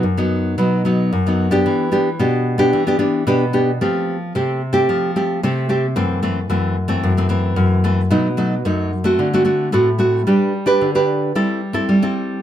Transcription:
0.03 F#2
0.17 F#3 B3 D#4
0.58 B2 F#3 B3 D#4
0.85 F#3 B3 D#4
1.13 F#2
1.26 F#3 B3 D#4
1.51 B3 D4 G4
1.66 E3
1.92 B3 D4 G4
2.19 B2 B3 D4 G4
2.58 B3 D4 G4
2.73 E3
2.87 B3 D4 G4
2.99 B3 D4 G4
3.27 B2 B3 D4 G4
3.53 B3 D4 G4
3.81 F3 A3 C4 G4
4.35 C3 A3 C4 G4
4.73 A3 C4 G4
4.89 F3
5.16 A3 C4 G4
5.43 C3 A3 C4 G4
5.69 A3 C4 G4
5.96 F#2 E3 A3 C4
6.22 E3 A3 C4
6.49 F#2 E3 A3 C4
6.88 E3 A3 C4
7.03 F#2
7.17 E3 A3 C4
7.29 E3 A3 C4
7.56 F#2
7.84 E3 A3 C4
8.10 B2 F#3 A3 D#4
8.37 F#3 A3 D#4
8.65 F#2 F#3 A3 D#4
9.04 A3 C4 F#4
9.19 D3
9.34 A3 C4 F#4
9.45 A3 C4 F#4
9.72 A2 A3 C4 F#4
9.99 A3 C4 F#4
10.27 G3 D4 G4 B4
10.66 D4 G4 B4
10.81 D3
10.95 D4 G4 B4
11.35 G3 C4 E4 A4
11.73 C4 E4 A4
11.89 G3
12.02 C4 E4 A4

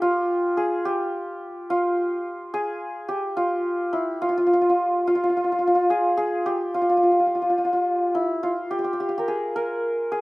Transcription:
Already playing: G4
0.02 F4
0.57 G#4
0.85 G4
1.70 F4
2.54 G#4
3.09 G4
3.37 F4
3.93 E4
4.22 F4
4.29 F4
4.37 F4
4.47 F4
4.53 F4
4.61 F4
4.69 F4
5.07 F4
5.15 F4
5.24 F4
5.30 F4
5.37 F4
5.44 F4
5.52 F4
5.59 F4
5.67 F4
5.75 F4
5.90 G#4
6.17 G#4
6.46 G4
6.74 F4
6.81 F4
6.89 F4
6.97 F4
7.03 F4
7.11 F4
7.20 F4
7.27 F4
7.35 F4
7.42 F4
7.50 F4
7.58 F4
7.65 F4
7.73 F4
8.15 E4
8.43 F4
8.71 G4
8.79 G4
8.84 G4
8.93 G4
9.00 G4
9.09 G4
9.18 G4 A#4
9.28 G#4
9.56 A#4
10.12 G#4

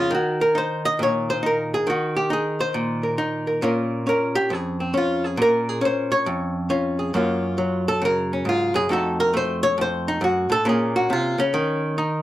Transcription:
Already playing: F2 C#3 F4
0.11 D#3 F#4
0.41 A#4
0.55 D#4 C5
0.85 D#5
0.99 A#2 C#5
1.30 C5
1.43 D#4 A#4
1.74 G#4
1.87 D#3 F#4
2.17 G4
2.30 D#4 G#4
2.60 C5
2.74 A#2
3.03 A#4
3.18 D#4
3.47 A#4
3.62 A#2 C#4 F4 A#4
4.07 C#4 A#4
4.35 G4
4.50 F2 G#4
4.80 C4
4.94 C#4 F4
5.24 G#4
5.37 A#2
5.42 A#4
5.69 G#4
5.81 C#4 C5
6.12 C#5
6.26 F2
6.70 C#4 F4
6.99 G#4
7.14 F#2 F#3 A#3 C#4 F4
7.58 F#3
7.88 A4
8.02 C#3 A#4
8.33 C#4
8.45 G#2 F4
8.74 F#2 G#4
8.89 F2 A3 D#4 F#4 A4
9.20 A#4
9.34 A3 C5
9.63 C#5
9.78 F2 C5
10.08 D#4
10.21 F#2 F#4
10.50 A2 A4
10.65 A#2 A#3 C#4 G#4
10.96 F#4
11.10 C3 F4
11.38 C#3 C#4
11.54 D#3
11.98 D#4

